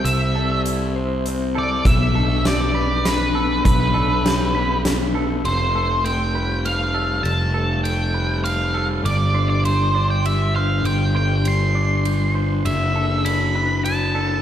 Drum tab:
RD |------|------|------|x-x-x-|
HH |x-x-x-|x-x-x-|x-x-x-|------|
SD |------|--o-o-|--o-o-|------|
BD |------|o-----|o-----|------|

RD |x-x-x-|x-x-x-|x-x-x-|x-x-x-|
HH |------|------|------|------|
SD |------|------|------|------|
BD |------|------|------|------|